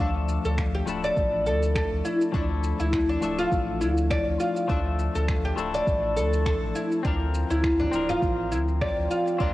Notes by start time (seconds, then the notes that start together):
Already playing: F3
0.00 D2 A3 D4 A4 E5
0.28 shaker
0.45 D2 A4, shaker
0.58 finger snap, kick, shaker
0.74 G4
0.86 D1 F3 A3 D4 E4 A4, shaker
1.04 D5, shaker
1.16 A1, kick, shaker
1.46 D2 A4, shaker
1.62 shaker
1.75 A4, finger snap, kick, shaker
1.92 D2
2.05 E4, shaker
2.21 shaker
2.32 D2 F3 A3 D4 E4, kick, shaker
2.36 A4
2.64 shaker
2.80 D2 E4, shaker
2.93 finger snap, kick, shaker
3.09 D4
3.21 D1 F3 A3 D4 A4 E5, shaker
3.39 F4, shaker
3.52 A1, kick, shaker
3.81 D2 E4, shaker
3.98 shaker
4.11 D5, finger snap, kick, shaker
4.27 D2
4.40 F4, shaker
4.57 shaker
4.68 D2 F3 A3 D4 A4 E5, kick, shaker
4.99 shaker
5.15 D2 A4, shaker
5.28 finger snap, kick, shaker
5.45 G4
5.56 D1 F3 A3 D4 E4, shaker
5.60 A4
5.74 D5, shaker
5.87 A1, kick, shaker
6.17 D2 A4, shaker
6.33 shaker
6.46 A4, finger snap, kick, shaker
6.63 A1
6.75 E4, shaker
6.92 shaker
7.03 D2 F3 C4 D4, kick, shaker
7.07 A#4
7.34 shaker
7.50 D2 E4, shaker
7.64 finger snap, kick, shaker
7.80 D4, frame drum
7.92 D1 F3 C4 A#4, shaker
8.09 F4, frame drum, shaker
8.22 A1, kick, shaker
8.52 D2 E4, shaker
8.68 shaker
8.81 D5, finger snap, kick, shaker
8.98 D2
9.11 F4, shaker
9.27 shaker
9.38 D2 A#3 C4 D4 F4, kick, shaker